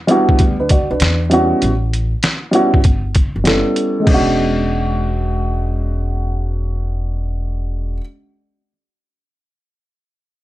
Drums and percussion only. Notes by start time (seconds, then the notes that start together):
0.08 closed hi-hat
0.29 kick
0.39 kick, closed hi-hat
0.69 kick, closed hi-hat
1.00 snare, closed hi-hat
1.31 closed hi-hat
1.62 closed hi-hat
1.93 closed hi-hat
2.23 snare, closed hi-hat
2.53 closed hi-hat
2.74 kick
2.84 kick, closed hi-hat
3.15 kick, closed hi-hat
3.45 snare, closed hi-hat
3.76 closed hi-hat
4.07 kick, crash